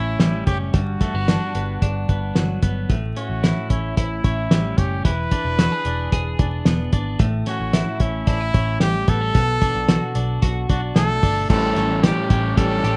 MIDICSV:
0, 0, Header, 1, 6, 480
1, 0, Start_track
1, 0, Tempo, 538117
1, 659, Time_signature, 4, 2, 24, 8
1, 11567, End_track
2, 0, Start_track
2, 0, Title_t, "Trumpet"
2, 0, Program_c, 0, 56
2, 0, Note_on_c, 0, 64, 93
2, 382, Note_off_c, 0, 64, 0
2, 410, Note_on_c, 0, 67, 90
2, 520, Note_off_c, 0, 67, 0
2, 653, Note_on_c, 0, 66, 90
2, 2062, Note_off_c, 0, 66, 0
2, 2827, Note_on_c, 0, 66, 75
2, 3297, Note_on_c, 0, 64, 70
2, 3310, Note_off_c, 0, 66, 0
2, 3533, Note_off_c, 0, 64, 0
2, 3539, Note_on_c, 0, 64, 77
2, 4260, Note_on_c, 0, 67, 77
2, 4274, Note_off_c, 0, 64, 0
2, 4501, Note_off_c, 0, 67, 0
2, 4508, Note_on_c, 0, 71, 97
2, 5909, Note_off_c, 0, 71, 0
2, 6675, Note_on_c, 0, 66, 79
2, 7149, Note_on_c, 0, 64, 70
2, 7162, Note_off_c, 0, 66, 0
2, 7382, Note_off_c, 0, 64, 0
2, 7388, Note_on_c, 0, 64, 92
2, 7831, Note_off_c, 0, 64, 0
2, 7862, Note_on_c, 0, 67, 93
2, 8109, Note_on_c, 0, 69, 108
2, 8122, Note_off_c, 0, 67, 0
2, 9529, Note_off_c, 0, 69, 0
2, 9535, Note_on_c, 0, 66, 76
2, 9643, Note_off_c, 0, 66, 0
2, 9769, Note_on_c, 0, 69, 102
2, 10219, Note_off_c, 0, 69, 0
2, 10254, Note_on_c, 0, 69, 93
2, 10735, Note_on_c, 0, 67, 86
2, 10749, Note_off_c, 0, 69, 0
2, 11218, Note_on_c, 0, 69, 95
2, 11231, Note_off_c, 0, 67, 0
2, 11567, Note_off_c, 0, 69, 0
2, 11567, End_track
3, 0, Start_track
3, 0, Title_t, "Clean electric guitar"
3, 0, Program_c, 1, 27
3, 0, Note_on_c, 1, 45, 74
3, 0, Note_on_c, 1, 61, 52
3, 0, Note_on_c, 1, 64, 50
3, 178, Note_on_c, 1, 55, 53
3, 410, Note_off_c, 1, 61, 0
3, 420, Note_on_c, 1, 61, 54
3, 656, Note_off_c, 1, 45, 0
3, 660, Note_on_c, 1, 43, 67
3, 708, Note_off_c, 1, 61, 0
3, 708, Note_off_c, 1, 64, 0
3, 901, Note_on_c, 1, 57, 51
3, 928, Note_off_c, 1, 55, 0
3, 1024, Note_off_c, 1, 57, 0
3, 1024, Note_on_c, 1, 59, 44
3, 1142, Note_on_c, 1, 62, 56
3, 1375, Note_off_c, 1, 59, 0
3, 1385, Note_on_c, 1, 59, 47
3, 1614, Note_off_c, 1, 62, 0
3, 1625, Note_on_c, 1, 62, 58
3, 1855, Note_off_c, 1, 59, 0
3, 1866, Note_on_c, 1, 59, 48
3, 2102, Note_on_c, 1, 54, 53
3, 2332, Note_off_c, 1, 59, 0
3, 2343, Note_on_c, 1, 59, 54
3, 2581, Note_off_c, 1, 43, 0
3, 2584, Note_on_c, 1, 45, 72
3, 2630, Note_off_c, 1, 54, 0
3, 2630, Note_off_c, 1, 59, 0
3, 2631, Note_off_c, 1, 62, 0
3, 2825, Note_on_c, 1, 61, 50
3, 3062, Note_on_c, 1, 64, 57
3, 3290, Note_off_c, 1, 61, 0
3, 3301, Note_on_c, 1, 61, 51
3, 3541, Note_off_c, 1, 64, 0
3, 3544, Note_on_c, 1, 64, 60
3, 3773, Note_off_c, 1, 61, 0
3, 3784, Note_on_c, 1, 61, 56
3, 4026, Note_on_c, 1, 55, 52
3, 4257, Note_off_c, 1, 61, 0
3, 4268, Note_on_c, 1, 61, 56
3, 4502, Note_on_c, 1, 52, 68
3, 4503, Note_off_c, 1, 45, 0
3, 4552, Note_off_c, 1, 55, 0
3, 4553, Note_off_c, 1, 61, 0
3, 4744, Note_on_c, 1, 62, 48
3, 4771, Note_off_c, 1, 64, 0
3, 4982, Note_on_c, 1, 66, 59
3, 5103, Note_off_c, 1, 66, 0
3, 5103, Note_on_c, 1, 68, 46
3, 5217, Note_off_c, 1, 62, 0
3, 5227, Note_on_c, 1, 62, 46
3, 5454, Note_off_c, 1, 68, 0
3, 5464, Note_on_c, 1, 68, 66
3, 5691, Note_off_c, 1, 62, 0
3, 5701, Note_on_c, 1, 62, 55
3, 5941, Note_on_c, 1, 59, 54
3, 6172, Note_off_c, 1, 62, 0
3, 6183, Note_on_c, 1, 62, 54
3, 6423, Note_on_c, 1, 45, 77
3, 6469, Note_off_c, 1, 59, 0
3, 6470, Note_off_c, 1, 62, 0
3, 6471, Note_off_c, 1, 68, 0
3, 6661, Note_on_c, 1, 61, 53
3, 6900, Note_on_c, 1, 64, 61
3, 7127, Note_off_c, 1, 61, 0
3, 7137, Note_on_c, 1, 61, 54
3, 7374, Note_off_c, 1, 64, 0
3, 7378, Note_on_c, 1, 62, 59
3, 7405, Note_off_c, 1, 52, 0
3, 7499, Note_off_c, 1, 62, 0
3, 7499, Note_on_c, 1, 64, 54
3, 7606, Note_off_c, 1, 61, 0
3, 7617, Note_on_c, 1, 61, 55
3, 7855, Note_on_c, 1, 55, 56
3, 8092, Note_off_c, 1, 61, 0
3, 8096, Note_on_c, 1, 59, 61
3, 8215, Note_off_c, 1, 59, 0
3, 8215, Note_on_c, 1, 61, 46
3, 8334, Note_off_c, 1, 45, 0
3, 8338, Note_on_c, 1, 47, 73
3, 8385, Note_off_c, 1, 55, 0
3, 8386, Note_off_c, 1, 61, 0
3, 8387, Note_off_c, 1, 64, 0
3, 8577, Note_on_c, 1, 62, 51
3, 8817, Note_on_c, 1, 66, 60
3, 9046, Note_off_c, 1, 62, 0
3, 9056, Note_on_c, 1, 62, 51
3, 9286, Note_off_c, 1, 66, 0
3, 9296, Note_on_c, 1, 66, 66
3, 9529, Note_off_c, 1, 62, 0
3, 9539, Note_on_c, 1, 62, 60
3, 9780, Note_on_c, 1, 57, 61
3, 10005, Note_off_c, 1, 62, 0
3, 10016, Note_on_c, 1, 62, 56
3, 10253, Note_off_c, 1, 47, 0
3, 10256, Note_on_c, 1, 45, 78
3, 10304, Note_off_c, 1, 62, 0
3, 10304, Note_off_c, 1, 66, 0
3, 10496, Note_on_c, 1, 61, 55
3, 10735, Note_on_c, 1, 67, 61
3, 10762, Note_off_c, 1, 57, 0
3, 10965, Note_off_c, 1, 61, 0
3, 10976, Note_on_c, 1, 61, 54
3, 11214, Note_on_c, 1, 55, 66
3, 11442, Note_off_c, 1, 67, 0
3, 11453, Note_on_c, 1, 67, 67
3, 11567, Note_off_c, 1, 45, 0
3, 11567, Note_off_c, 1, 55, 0
3, 11567, Note_off_c, 1, 61, 0
3, 11567, Note_off_c, 1, 67, 0
3, 11567, End_track
4, 0, Start_track
4, 0, Title_t, "Overdriven electric guitar"
4, 0, Program_c, 2, 29
4, 10256, Note_on_c, 2, 45, 64
4, 10261, Note_on_c, 2, 52, 80
4, 10264, Note_on_c, 2, 55, 82
4, 10270, Note_on_c, 2, 61, 76
4, 10273, Note_on_c, 2, 67, 85
4, 10726, Note_off_c, 2, 52, 0
4, 10728, Note_off_c, 2, 55, 0
4, 10730, Note_on_c, 2, 52, 58
4, 10735, Note_off_c, 2, 45, 0
4, 10738, Note_off_c, 2, 61, 0
4, 10739, Note_on_c, 2, 55, 60
4, 10744, Note_off_c, 2, 67, 0
4, 10749, Note_on_c, 2, 61, 60
4, 10757, Note_on_c, 2, 67, 62
4, 10960, Note_off_c, 2, 67, 0
4, 10970, Note_on_c, 2, 67, 48
4, 10972, Note_off_c, 2, 52, 0
4, 10973, Note_off_c, 2, 61, 0
4, 10977, Note_off_c, 2, 55, 0
4, 10984, Note_on_c, 2, 61, 40
4, 10992, Note_on_c, 2, 55, 33
4, 11209, Note_off_c, 2, 55, 0
4, 11210, Note_on_c, 2, 45, 65
4, 11212, Note_off_c, 2, 67, 0
4, 11214, Note_off_c, 2, 61, 0
4, 11217, Note_on_c, 2, 52, 73
4, 11219, Note_on_c, 2, 55, 77
4, 11224, Note_on_c, 2, 61, 77
4, 11229, Note_on_c, 2, 67, 83
4, 11440, Note_off_c, 2, 67, 0
4, 11451, Note_on_c, 2, 67, 56
4, 11452, Note_off_c, 2, 45, 0
4, 11454, Note_off_c, 2, 61, 0
4, 11455, Note_off_c, 2, 52, 0
4, 11456, Note_off_c, 2, 55, 0
4, 11464, Note_on_c, 2, 61, 51
4, 11476, Note_on_c, 2, 55, 49
4, 11567, Note_off_c, 2, 55, 0
4, 11567, Note_off_c, 2, 61, 0
4, 11567, Note_off_c, 2, 67, 0
4, 11567, End_track
5, 0, Start_track
5, 0, Title_t, "Picked electric bass"
5, 0, Program_c, 3, 34
5, 0, Note_on_c, 3, 33, 82
5, 136, Note_off_c, 3, 33, 0
5, 178, Note_on_c, 3, 33, 94
5, 376, Note_off_c, 3, 33, 0
5, 419, Note_on_c, 3, 30, 74
5, 616, Note_off_c, 3, 30, 0
5, 659, Note_on_c, 3, 31, 83
5, 856, Note_off_c, 3, 31, 0
5, 1020, Note_on_c, 3, 31, 81
5, 1217, Note_off_c, 3, 31, 0
5, 1382, Note_on_c, 3, 31, 74
5, 1578, Note_off_c, 3, 31, 0
5, 1623, Note_on_c, 3, 31, 77
5, 1818, Note_off_c, 3, 31, 0
5, 1864, Note_on_c, 3, 31, 87
5, 2060, Note_off_c, 3, 31, 0
5, 2102, Note_on_c, 3, 31, 87
5, 2298, Note_off_c, 3, 31, 0
5, 2343, Note_on_c, 3, 31, 65
5, 2539, Note_off_c, 3, 31, 0
5, 2582, Note_on_c, 3, 33, 88
5, 2778, Note_off_c, 3, 33, 0
5, 2940, Note_on_c, 3, 33, 78
5, 3137, Note_off_c, 3, 33, 0
5, 3301, Note_on_c, 3, 33, 80
5, 3498, Note_off_c, 3, 33, 0
5, 3544, Note_on_c, 3, 33, 80
5, 3740, Note_off_c, 3, 33, 0
5, 3785, Note_on_c, 3, 33, 90
5, 3980, Note_off_c, 3, 33, 0
5, 4022, Note_on_c, 3, 33, 87
5, 4219, Note_off_c, 3, 33, 0
5, 4263, Note_on_c, 3, 30, 76
5, 4459, Note_off_c, 3, 30, 0
5, 4504, Note_on_c, 3, 28, 84
5, 4700, Note_off_c, 3, 28, 0
5, 4859, Note_on_c, 3, 28, 77
5, 5057, Note_off_c, 3, 28, 0
5, 5222, Note_on_c, 3, 28, 86
5, 5419, Note_off_c, 3, 28, 0
5, 5463, Note_on_c, 3, 28, 77
5, 5659, Note_off_c, 3, 28, 0
5, 5701, Note_on_c, 3, 28, 94
5, 5898, Note_off_c, 3, 28, 0
5, 5939, Note_on_c, 3, 28, 99
5, 6137, Note_off_c, 3, 28, 0
5, 6180, Note_on_c, 3, 32, 76
5, 6377, Note_off_c, 3, 32, 0
5, 6419, Note_on_c, 3, 33, 82
5, 6616, Note_off_c, 3, 33, 0
5, 6781, Note_on_c, 3, 33, 72
5, 6978, Note_off_c, 3, 33, 0
5, 7137, Note_on_c, 3, 33, 81
5, 7335, Note_off_c, 3, 33, 0
5, 7379, Note_on_c, 3, 33, 76
5, 7577, Note_off_c, 3, 33, 0
5, 7621, Note_on_c, 3, 33, 98
5, 7818, Note_off_c, 3, 33, 0
5, 7861, Note_on_c, 3, 33, 90
5, 8057, Note_off_c, 3, 33, 0
5, 8100, Note_on_c, 3, 33, 81
5, 8297, Note_off_c, 3, 33, 0
5, 8340, Note_on_c, 3, 35, 93
5, 8536, Note_off_c, 3, 35, 0
5, 8700, Note_on_c, 3, 35, 82
5, 8896, Note_off_c, 3, 35, 0
5, 9059, Note_on_c, 3, 35, 85
5, 9255, Note_off_c, 3, 35, 0
5, 9300, Note_on_c, 3, 35, 91
5, 9496, Note_off_c, 3, 35, 0
5, 9539, Note_on_c, 3, 35, 84
5, 9735, Note_off_c, 3, 35, 0
5, 9778, Note_on_c, 3, 35, 92
5, 9975, Note_off_c, 3, 35, 0
5, 10018, Note_on_c, 3, 31, 72
5, 10214, Note_off_c, 3, 31, 0
5, 10256, Note_on_c, 3, 33, 103
5, 10453, Note_off_c, 3, 33, 0
5, 10498, Note_on_c, 3, 33, 89
5, 10792, Note_off_c, 3, 33, 0
5, 10974, Note_on_c, 3, 33, 93
5, 11171, Note_off_c, 3, 33, 0
5, 11215, Note_on_c, 3, 33, 88
5, 11411, Note_off_c, 3, 33, 0
5, 11453, Note_on_c, 3, 33, 93
5, 11567, Note_off_c, 3, 33, 0
5, 11567, End_track
6, 0, Start_track
6, 0, Title_t, "Drums"
6, 174, Note_on_c, 9, 38, 91
6, 178, Note_on_c, 9, 42, 71
6, 263, Note_off_c, 9, 38, 0
6, 267, Note_off_c, 9, 42, 0
6, 418, Note_on_c, 9, 42, 64
6, 419, Note_on_c, 9, 36, 78
6, 507, Note_off_c, 9, 42, 0
6, 508, Note_off_c, 9, 36, 0
6, 657, Note_on_c, 9, 42, 78
6, 659, Note_on_c, 9, 36, 89
6, 746, Note_off_c, 9, 42, 0
6, 748, Note_off_c, 9, 36, 0
6, 898, Note_on_c, 9, 42, 55
6, 899, Note_on_c, 9, 36, 68
6, 899, Note_on_c, 9, 38, 25
6, 987, Note_off_c, 9, 42, 0
6, 988, Note_off_c, 9, 36, 0
6, 988, Note_off_c, 9, 38, 0
6, 1143, Note_on_c, 9, 38, 91
6, 1144, Note_on_c, 9, 42, 78
6, 1232, Note_off_c, 9, 38, 0
6, 1233, Note_off_c, 9, 42, 0
6, 1381, Note_on_c, 9, 42, 64
6, 1470, Note_off_c, 9, 42, 0
6, 1623, Note_on_c, 9, 36, 72
6, 1624, Note_on_c, 9, 42, 82
6, 1713, Note_off_c, 9, 36, 0
6, 1714, Note_off_c, 9, 42, 0
6, 1864, Note_on_c, 9, 42, 49
6, 1865, Note_on_c, 9, 36, 74
6, 1953, Note_off_c, 9, 42, 0
6, 1954, Note_off_c, 9, 36, 0
6, 2100, Note_on_c, 9, 38, 83
6, 2104, Note_on_c, 9, 42, 69
6, 2189, Note_off_c, 9, 38, 0
6, 2193, Note_off_c, 9, 42, 0
6, 2342, Note_on_c, 9, 42, 68
6, 2343, Note_on_c, 9, 36, 78
6, 2431, Note_off_c, 9, 42, 0
6, 2432, Note_off_c, 9, 36, 0
6, 2583, Note_on_c, 9, 42, 73
6, 2584, Note_on_c, 9, 36, 86
6, 2673, Note_off_c, 9, 36, 0
6, 2673, Note_off_c, 9, 42, 0
6, 2823, Note_on_c, 9, 42, 58
6, 2912, Note_off_c, 9, 42, 0
6, 3065, Note_on_c, 9, 38, 92
6, 3066, Note_on_c, 9, 42, 78
6, 3155, Note_off_c, 9, 38, 0
6, 3155, Note_off_c, 9, 42, 0
6, 3301, Note_on_c, 9, 42, 65
6, 3302, Note_on_c, 9, 36, 70
6, 3390, Note_off_c, 9, 42, 0
6, 3392, Note_off_c, 9, 36, 0
6, 3544, Note_on_c, 9, 36, 70
6, 3544, Note_on_c, 9, 42, 83
6, 3633, Note_off_c, 9, 36, 0
6, 3633, Note_off_c, 9, 42, 0
6, 3785, Note_on_c, 9, 42, 54
6, 3786, Note_on_c, 9, 36, 78
6, 3874, Note_off_c, 9, 42, 0
6, 3875, Note_off_c, 9, 36, 0
6, 4022, Note_on_c, 9, 38, 94
6, 4026, Note_on_c, 9, 42, 80
6, 4111, Note_off_c, 9, 38, 0
6, 4116, Note_off_c, 9, 42, 0
6, 4263, Note_on_c, 9, 42, 65
6, 4264, Note_on_c, 9, 36, 74
6, 4352, Note_off_c, 9, 42, 0
6, 4353, Note_off_c, 9, 36, 0
6, 4504, Note_on_c, 9, 36, 88
6, 4504, Note_on_c, 9, 42, 86
6, 4593, Note_off_c, 9, 36, 0
6, 4593, Note_off_c, 9, 42, 0
6, 4740, Note_on_c, 9, 42, 63
6, 4742, Note_on_c, 9, 36, 72
6, 4829, Note_off_c, 9, 42, 0
6, 4831, Note_off_c, 9, 36, 0
6, 4983, Note_on_c, 9, 38, 93
6, 4984, Note_on_c, 9, 42, 83
6, 5072, Note_off_c, 9, 38, 0
6, 5073, Note_off_c, 9, 42, 0
6, 5217, Note_on_c, 9, 42, 66
6, 5306, Note_off_c, 9, 42, 0
6, 5462, Note_on_c, 9, 42, 87
6, 5463, Note_on_c, 9, 36, 74
6, 5551, Note_off_c, 9, 42, 0
6, 5552, Note_off_c, 9, 36, 0
6, 5701, Note_on_c, 9, 42, 52
6, 5703, Note_on_c, 9, 36, 90
6, 5790, Note_off_c, 9, 42, 0
6, 5792, Note_off_c, 9, 36, 0
6, 5935, Note_on_c, 9, 38, 93
6, 5940, Note_on_c, 9, 42, 78
6, 6025, Note_off_c, 9, 38, 0
6, 6029, Note_off_c, 9, 42, 0
6, 6178, Note_on_c, 9, 42, 68
6, 6180, Note_on_c, 9, 36, 77
6, 6267, Note_off_c, 9, 42, 0
6, 6269, Note_off_c, 9, 36, 0
6, 6416, Note_on_c, 9, 42, 84
6, 6419, Note_on_c, 9, 36, 102
6, 6505, Note_off_c, 9, 42, 0
6, 6509, Note_off_c, 9, 36, 0
6, 6656, Note_on_c, 9, 42, 60
6, 6657, Note_on_c, 9, 38, 29
6, 6745, Note_off_c, 9, 42, 0
6, 6746, Note_off_c, 9, 38, 0
6, 6898, Note_on_c, 9, 38, 89
6, 6898, Note_on_c, 9, 42, 82
6, 6987, Note_off_c, 9, 38, 0
6, 6988, Note_off_c, 9, 42, 0
6, 7135, Note_on_c, 9, 42, 71
6, 7138, Note_on_c, 9, 36, 76
6, 7224, Note_off_c, 9, 42, 0
6, 7227, Note_off_c, 9, 36, 0
6, 7377, Note_on_c, 9, 42, 80
6, 7380, Note_on_c, 9, 36, 78
6, 7466, Note_off_c, 9, 42, 0
6, 7469, Note_off_c, 9, 36, 0
6, 7619, Note_on_c, 9, 42, 56
6, 7621, Note_on_c, 9, 36, 81
6, 7709, Note_off_c, 9, 42, 0
6, 7711, Note_off_c, 9, 36, 0
6, 7852, Note_on_c, 9, 38, 83
6, 7856, Note_on_c, 9, 42, 71
6, 7941, Note_off_c, 9, 38, 0
6, 7945, Note_off_c, 9, 42, 0
6, 8096, Note_on_c, 9, 42, 64
6, 8099, Note_on_c, 9, 36, 76
6, 8186, Note_off_c, 9, 42, 0
6, 8189, Note_off_c, 9, 36, 0
6, 8337, Note_on_c, 9, 42, 82
6, 8339, Note_on_c, 9, 36, 94
6, 8426, Note_off_c, 9, 42, 0
6, 8429, Note_off_c, 9, 36, 0
6, 8577, Note_on_c, 9, 42, 62
6, 8578, Note_on_c, 9, 38, 28
6, 8579, Note_on_c, 9, 36, 76
6, 8666, Note_off_c, 9, 42, 0
6, 8667, Note_off_c, 9, 38, 0
6, 8668, Note_off_c, 9, 36, 0
6, 8817, Note_on_c, 9, 38, 95
6, 8818, Note_on_c, 9, 42, 85
6, 8907, Note_off_c, 9, 38, 0
6, 8907, Note_off_c, 9, 42, 0
6, 9054, Note_on_c, 9, 42, 64
6, 9143, Note_off_c, 9, 42, 0
6, 9298, Note_on_c, 9, 42, 82
6, 9300, Note_on_c, 9, 36, 71
6, 9387, Note_off_c, 9, 42, 0
6, 9389, Note_off_c, 9, 36, 0
6, 9539, Note_on_c, 9, 42, 58
6, 9540, Note_on_c, 9, 36, 82
6, 9628, Note_off_c, 9, 42, 0
6, 9630, Note_off_c, 9, 36, 0
6, 9772, Note_on_c, 9, 38, 91
6, 9776, Note_on_c, 9, 42, 83
6, 9861, Note_off_c, 9, 38, 0
6, 9865, Note_off_c, 9, 42, 0
6, 10016, Note_on_c, 9, 46, 69
6, 10018, Note_on_c, 9, 36, 75
6, 10105, Note_off_c, 9, 46, 0
6, 10107, Note_off_c, 9, 36, 0
6, 10256, Note_on_c, 9, 49, 98
6, 10257, Note_on_c, 9, 36, 96
6, 10345, Note_off_c, 9, 49, 0
6, 10346, Note_off_c, 9, 36, 0
6, 10494, Note_on_c, 9, 42, 63
6, 10495, Note_on_c, 9, 38, 32
6, 10583, Note_off_c, 9, 42, 0
6, 10584, Note_off_c, 9, 38, 0
6, 10735, Note_on_c, 9, 38, 97
6, 10735, Note_on_c, 9, 42, 91
6, 10824, Note_off_c, 9, 38, 0
6, 10825, Note_off_c, 9, 42, 0
6, 10973, Note_on_c, 9, 42, 79
6, 10974, Note_on_c, 9, 36, 81
6, 11062, Note_off_c, 9, 42, 0
6, 11064, Note_off_c, 9, 36, 0
6, 11216, Note_on_c, 9, 36, 78
6, 11217, Note_on_c, 9, 42, 91
6, 11305, Note_off_c, 9, 36, 0
6, 11306, Note_off_c, 9, 42, 0
6, 11457, Note_on_c, 9, 42, 60
6, 11546, Note_off_c, 9, 42, 0
6, 11567, End_track
0, 0, End_of_file